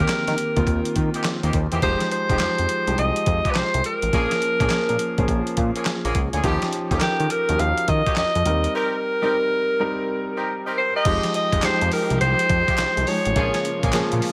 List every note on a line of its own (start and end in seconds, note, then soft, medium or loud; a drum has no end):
0.00 0.56 D#3 medium
0.00 0.13 A#3 medium
0.00 0.57 A#3 medium
0.00 0.13 C4 medium
0.00 0.57 C4 medium
0.00 0.13 D#4 medium
0.00 0.13 G4 medium
0.00 1.83 G4 medium
0.00 1.21 A#4 loud
0.08 0.17 D#3 soft
0.08 snare loud
0.08 clap medium
0.08 closed hi-hat medium
0.28 0.35 D#3 loud
0.28 snare medium
0.28 closed hi-hat soft
0.38 closed hi-hat medium
0.56 0.64 D#2 medium
0.56 1.62 D#3 medium
0.56 1.62 A#3 medium
0.56 1.62 C4 medium
0.56 1.62 F4 medium
0.56 kick medium
0.56 closed hi-hat soft
0.67 0.81 D#2 loud
0.67 kick medium
0.67 closed hi-hat medium
0.85 closed hi-hat medium
0.96 1.10 D#3 loud
0.96 kick medium
0.96 closed hi-hat medium
1.14 1.29 A#3 medium
1.14 1.29 C4 medium
1.14 1.29 D#4 medium
1.14 1.29 G4 medium
1.14 closed hi-hat medium
1.24 snare loud
1.24 clap medium
1.24 closed hi-hat medium
1.43 1.51 D#2 medium
1.43 1.58 A#3 medium
1.43 1.58 C4 medium
1.43 1.58 D#4 medium
1.43 1.58 G4 medium
1.43 closed hi-hat soft
1.53 1.67 D#2 loud
1.53 kick medium
1.53 closed hi-hat medium
1.72 1.80 E2 loud
1.72 1.86 A#3 medium
1.72 1.86 C4 medium
1.72 1.81 D#4 medium
1.72 1.81 G4 medium
1.72 closed hi-hat soft
1.82 1.96 F1 loud
1.82 2.26 F3 medium
1.82 2.03 G#3 medium
1.82 2.26 G#3 medium
1.82 2.03 D#4 medium
1.82 2.26 D#4 medium
1.82 2.03 F4 medium
1.82 2.03 G4 loud
1.82 2.26 G4 medium
1.82 2.09 C5 loud
1.82 kick loud
1.82 closed hi-hat medium
2.00 snare medium
2.00 closed hi-hat medium
2.11 3.00 C5 loud
2.11 closed hi-hat medium
2.29 2.37 F1 medium
2.29 2.82 F3 medium
2.29 2.44 G#3 medium
2.29 2.82 G#3 medium
2.29 2.44 D#4 medium
2.29 2.83 D#4 medium
2.29 2.44 F4 medium
2.29 2.44 G4 medium
2.29 2.83 G4 medium
2.29 kick medium
2.29 closed hi-hat medium
2.39 2.48 F2 soft
2.39 snare loud
2.39 clap medium
2.39 closed hi-hat medium
2.58 2.67 F2 medium
2.58 closed hi-hat soft
2.69 closed hi-hat medium
2.87 2.95 C2 medium
2.87 3.93 F3 medium
2.87 3.93 G#3 medium
2.87 3.93 D#4 medium
2.87 3.93 G4 medium
2.87 closed hi-hat soft
2.98 3.12 C2 medium
2.98 3.52 D#5 loud
2.98 closed hi-hat medium
3.16 closed hi-hat medium
3.26 3.40 F2 loud
3.26 kick loud
3.26 closed hi-hat medium
3.45 3.59 G#3 medium
3.45 3.60 D#4 medium
3.45 3.60 F4 medium
3.45 3.60 G4 medium
3.45 kick medium
3.45 closed hi-hat soft
3.50 3.58 B4 medium
3.55 3.63 C2 soft
3.55 3.85 C5 medium
3.55 snare loud
3.55 clap medium
3.55 closed hi-hat medium
3.74 3.82 C2 medium
3.74 closed hi-hat medium
3.84 5.54 A#4 medium
3.84 closed hi-hat medium
4.02 4.10 A1 medium
4.02 closed hi-hat soft
4.13 4.27 A#1 loud
4.13 4.57 F3 medium
4.13 4.34 A#3 medium
4.13 4.57 A#3 medium
4.13 4.34 C#4 medium
4.13 4.57 C#4 medium
4.13 4.34 F4 medium
4.13 4.34 G#4 loud
4.13 4.57 G#4 medium
4.13 kick loud
4.13 closed hi-hat medium
4.31 snare medium
4.31 closed hi-hat medium
4.42 closed hi-hat medium
4.60 4.68 A#1 medium
4.60 5.13 F3 medium
4.60 4.75 A#3 medium
4.60 5.13 A#3 medium
4.60 4.75 C#4 medium
4.60 5.13 C#4 medium
4.60 4.75 F4 medium
4.60 4.75 G#4 medium
4.60 5.14 G#4 loud
4.60 kick medium
4.60 closed hi-hat medium
4.70 4.78 A#2 soft
4.70 snare loud
4.70 clap medium
4.70 closed hi-hat medium
4.89 4.97 A#2 medium
4.89 closed hi-hat soft
4.99 closed hi-hat medium
5.18 5.26 A#1 medium
5.18 6.23 F3 medium
5.18 6.24 A#3 medium
5.18 6.24 C#4 medium
5.18 6.24 G#4 medium
5.18 kick medium
5.18 closed hi-hat soft
5.28 5.42 A#1 loud
5.28 kick medium
5.28 closed hi-hat medium
5.47 closed hi-hat soft
5.57 5.71 A#2 loud
5.57 kick loud
5.57 closed hi-hat medium
5.75 5.90 A#3 medium
5.75 5.90 C#4 medium
5.75 5.90 F4 medium
5.75 5.91 G#4 medium
5.75 closed hi-hat medium
5.85 snare loud
5.85 clap medium
5.85 closed hi-hat medium
6.04 6.12 A#1 medium
6.04 6.19 A#3 medium
6.04 6.19 C#4 medium
6.04 6.19 F4 medium
6.04 6.19 G#4 medium
6.04 closed hi-hat soft
6.15 6.29 C#2 medium
6.15 kick medium
6.15 closed hi-hat medium
6.33 6.41 D2 medium
6.33 6.48 A#3 medium
6.33 6.42 C#4 medium
6.33 6.43 F4 medium
6.33 6.48 G#4 medium
6.33 closed hi-hat soft
6.44 6.58 D#2 loud
6.44 6.87 F3 medium
6.44 6.65 C#4 medium
6.44 6.87 C#4 medium
6.44 6.65 D#4 medium
6.44 6.88 D#4 medium
6.44 6.65 F4 medium
6.44 6.65 G4 loud
6.44 6.88 G4 loud
6.44 kick loud
6.44 closed hi-hat medium
6.62 snare medium
6.62 closed hi-hat soft
6.73 closed hi-hat medium
6.91 6.99 D#2 loud
6.91 7.44 F3 medium
6.91 7.06 C#4 medium
6.91 7.44 C#4 medium
6.91 7.06 D#4 medium
6.91 7.44 D#4 medium
6.91 7.06 F4 medium
6.91 7.06 G4 medium
6.91 6.96 A4 medium
6.91 kick medium
6.91 closed hi-hat medium
6.99 7.09 D#3 soft
6.99 7.32 G4 medium
6.99 7.48 A#4 medium
6.99 snare loud
6.99 clap medium
6.99 closed hi-hat medium
7.20 7.28 D#3 medium
7.20 closed hi-hat soft
7.30 7.61 A#4 medium
7.30 closed hi-hat medium
7.48 7.57 D#2 medium
7.48 8.45 F3 medium
7.48 8.46 C#4 medium
7.48 8.45 D#4 medium
7.48 7.54 F#4 medium
7.48 closed hi-hat soft
7.56 7.73 D#2 loud
7.56 8.49 G4 medium
7.56 7.90 F5 loud
7.56 closed hi-hat medium
7.78 closed hi-hat medium
7.88 8.02 D#3 loud
7.88 8.17 D#5 loud
7.88 kick loud
7.88 closed hi-hat medium
8.06 8.21 C#4 medium
8.06 8.21 D#4 medium
8.06 8.21 F4 medium
8.06 8.21 G4 medium
8.06 kick medium
8.06 closed hi-hat soft
8.16 8.24 F2 soft
8.16 8.71 D#5 loud
8.16 snare loud
8.16 clap medium
8.16 closed hi-hat medium
8.35 8.43 F2 medium
8.35 closed hi-hat medium
8.45 8.67 D#2 loud
8.45 9.15 G3 medium
8.45 9.16 C4 medium
8.45 9.16 D#4 medium
8.45 9.16 A#4 medium
8.45 closed hi-hat medium
8.64 closed hi-hat soft
8.75 8.95 C4 medium
8.75 8.96 D#4 medium
8.75 8.96 G4 medium
8.75 8.96 A#4 loud
8.75 10.44 A#4 loud
9.22 9.75 G3 medium
9.22 9.36 C4 medium
9.22 9.75 C4 medium
9.22 9.37 D#4 medium
9.22 9.75 D#4 medium
9.22 9.37 G4 medium
9.22 9.37 A#4 medium
9.22 9.75 A#4 medium
9.80 10.85 G3 medium
9.80 10.85 C4 medium
9.80 10.85 D#4 medium
9.80 10.86 A#4 medium
10.37 10.52 C4 medium
10.37 10.52 D#4 medium
10.37 10.52 G4 medium
10.37 10.52 A#4 medium
10.66 10.81 C4 medium
10.66 10.81 D#4 medium
10.66 10.81 G4 medium
10.66 10.81 A#4 medium
10.78 10.94 C5 medium
10.95 11.09 C4 medium
10.95 11.04 D#4 medium
10.95 11.04 G4 medium
10.95 11.10 A#4 medium
10.95 11.32 D#5 loud
11.05 11.19 F1 loud
11.05 11.60 F3 medium
11.05 13.34 F3 medium
11.05 11.26 G#3 medium
11.05 11.60 G#3 medium
11.05 14.32 G#3 medium
11.05 11.26 D#4 medium
11.05 13.34 D#4 medium
11.05 11.60 D#4 medium
11.05 11.26 F4 medium
11.05 13.34 G4 medium
11.05 11.26 G4 loud
11.05 11.61 G4 medium
11.05 kick loud
11.05 closed hi-hat medium
11.05 crash medium
11.23 snare medium
11.23 closed hi-hat medium
11.34 11.66 D#5 loud
11.34 closed hi-hat medium
11.52 11.60 F1 medium
11.52 11.67 G#3 medium
11.52 11.67 D#4 medium
11.52 11.67 F4 medium
11.52 11.67 G4 medium
11.52 kick medium
11.52 closed hi-hat medium
11.62 11.71 F2 soft
11.62 12.73 F3 medium
11.62 12.73 G#3 medium
11.62 12.73 D#4 medium
11.62 12.73 G4 medium
11.62 11.92 C5 medium
11.62 snare loud
11.62 clap loud
11.62 clap medium
11.62 closed hi-hat medium
11.81 11.89 F2 loud
11.81 closed hi-hat soft
11.92 12.19 A#4 medium
11.92 open hi-hat medium
12.10 12.18 C2 medium
12.10 closed hi-hat soft
12.21 12.35 C2 loud
12.21 13.09 C5 loud
12.21 closed hi-hat medium
12.39 closed hi-hat medium
12.49 12.64 F2 loud
12.49 kick loud
12.49 closed hi-hat medium
12.68 12.83 G#3 medium
12.68 12.83 D#4 medium
12.68 12.83 F4 medium
12.68 12.83 G4 medium
12.68 kick medium
12.68 closed hi-hat medium
12.78 12.86 C2 soft
12.78 snare loud
12.78 clap medium
12.78 closed hi-hat medium
12.97 13.05 C2 medium
12.97 closed hi-hat medium
13.07 13.34 F3 medium
13.07 13.35 G#3 medium
13.07 13.35 D#4 medium
13.07 13.35 G#4 medium
13.07 13.94 C#5 medium
13.07 open hi-hat medium
13.25 13.34 A1 medium
13.25 closed hi-hat soft
13.36 13.50 A#1 loud
13.36 14.32 C#3 medium
13.36 13.91 F3 medium
13.36 13.57 A#3 medium
13.36 14.32 A#3 medium
13.36 13.91 A#3 medium
13.36 13.57 C#4 medium
13.36 13.91 C#4 medium
13.36 14.32 F4 medium
13.36 13.57 F4 medium
13.36 13.57 G#4 loud
13.36 13.91 G#4 medium
13.36 kick loud
13.36 closed hi-hat medium
13.54 snare medium
13.54 closed hi-hat medium
13.65 closed hi-hat medium
13.83 13.91 A#1 medium
13.83 13.98 A#3 medium
13.83 13.98 C#4 medium
13.83 13.98 F4 medium
13.83 13.98 G#4 medium
13.83 kick medium
13.83 closed hi-hat medium
13.93 14.02 A#2 soft
13.93 14.32 F3 medium
13.93 14.32 A#3 medium
13.93 14.32 C#4 medium
13.93 14.32 G#4 loud
13.93 snare loud
13.93 clap loud
13.93 clap medium
13.93 closed hi-hat medium
14.12 14.20 A#2 loud
14.12 closed hi-hat soft
14.22 open hi-hat medium